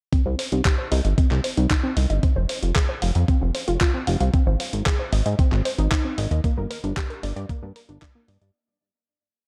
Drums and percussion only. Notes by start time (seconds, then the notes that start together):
0.13 kick, closed hi-hat
0.39 open hi-hat
0.52 closed hi-hat
0.65 kick, clap, closed hi-hat
0.92 open hi-hat
1.05 closed hi-hat
1.18 kick, closed hi-hat
1.31 clap
1.44 open hi-hat
1.57 closed hi-hat
1.71 kick, clap, closed hi-hat
1.97 open hi-hat
2.10 closed hi-hat
2.23 kick, closed hi-hat
2.49 open hi-hat
2.63 closed hi-hat
2.76 kick, clap, closed hi-hat
3.02 open hi-hat
3.15 closed hi-hat
3.28 kick, closed hi-hat
3.55 open hi-hat
3.68 closed hi-hat
3.81 kick, clap, closed hi-hat
4.07 open hi-hat
4.20 closed hi-hat
4.34 kick, closed hi-hat
4.60 open hi-hat
4.73 closed hi-hat
4.86 kick, clap, closed hi-hat
5.13 open hi-hat
5.26 closed hi-hat
5.39 kick, closed hi-hat
5.52 clap
5.65 open hi-hat
5.78 closed hi-hat
5.92 kick, clap, closed hi-hat
6.18 open hi-hat
6.31 closed hi-hat
6.44 kick, closed hi-hat
6.71 open hi-hat
6.84 closed hi-hat
6.97 kick, clap, closed hi-hat
7.10 closed hi-hat
7.23 open hi-hat
7.37 closed hi-hat
7.49 kick, closed hi-hat
7.76 open hi-hat
7.89 closed hi-hat
8.02 kick, clap, closed hi-hat
8.28 open hi-hat
8.42 closed hi-hat